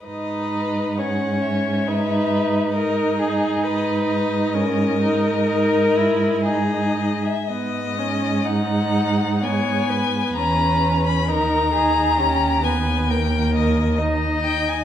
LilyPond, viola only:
\new Staff \with { instrumentName = "Viola" } { \time 4/4 \key gis \minor \tempo 4 = 65 dis'4 cis'4 dis'4 dis'4~ | dis'4 cis'8 dis'8 dis'8 e'8 dis'4 | b8 cis'8 dis'4 b4 cis'4 | dis'8 dis'8 cis'8 b8 ais4 dis'4 | }